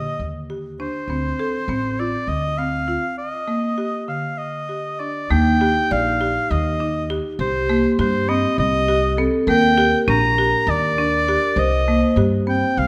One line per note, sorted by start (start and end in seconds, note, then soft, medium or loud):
0.00 0.39 D3 medium
0.00 0.28 D#5 medium
0.19 0.87 D#2 medium
0.50 0.74 G4 medium
0.80 1.04 D4 medium
0.80 2.01 C5 medium
1.08 1.31 D2 medium
1.08 1.34 C4 medium
1.39 1.64 A4 medium
1.68 2.14 A1 medium
1.68 1.94 C4 medium
1.99 2.48 F4 medium
1.99 2.30 D5 medium
2.27 2.96 D2 medium
2.27 2.59 D#5 medium
2.58 2.83 C4 medium
2.58 3.17 F5 medium
2.88 3.38 F4 medium
3.18 4.04 D#5 medium
3.48 3.72 A#3 medium
3.78 4.03 G4 medium
4.08 4.58 D3 medium
4.08 4.39 F5 medium
4.38 5.01 D#5 medium
4.69 4.95 G4 medium
4.99 5.25 D4 medium
4.99 5.32 D5 medium
5.30 5.77 D#2 medium
5.30 5.56 A#3 medium
5.30 7.45 D#4 medium
5.30 5.94 G5 loud
5.61 5.86 G4 medium
5.91 6.37 A#1 medium
5.91 6.16 D5 medium
5.91 6.53 F5 medium
6.21 6.70 G4 medium
6.51 7.19 D#2 loud
6.51 7.10 D#5 medium
6.80 7.05 D#4 medium
7.10 7.59 G4 medium
7.39 7.85 C2 loud
7.39 9.23 G4 medium
7.39 7.96 C5 medium
7.69 7.94 A#3 medium
7.99 8.44 G2 loud
7.99 8.24 G4 medium
7.99 8.30 C5 medium
8.29 8.78 C4 medium
8.29 8.58 D#5 medium
8.58 9.26 C2 medium
8.58 9.22 D#5 loud
8.88 9.13 G4 medium
9.17 9.43 C4 medium
9.17 9.48 A4 medium
9.47 9.93 D#2 loud
9.47 9.73 A#3 medium
9.47 11.63 A#4 loud
9.47 10.04 G5 loud
9.78 10.02 G4 medium
10.08 10.53 A#1 loud
10.08 10.33 D4 medium
10.08 10.71 A#5 loud
10.38 10.88 G4 medium
10.67 11.36 D#2 loud
10.67 11.61 D5 loud
10.98 11.23 D4 medium
11.28 11.77 G4 medium
11.56 12.02 C2 loud
11.56 12.87 C5 medium
11.56 12.25 D#5 medium
11.88 12.12 A#3 medium
12.16 12.62 G2 medium
12.16 12.42 G4 medium
12.47 12.87 C4 medium
12.47 12.80 G5 medium
12.77 12.87 C2 medium
12.77 12.87 F5 loud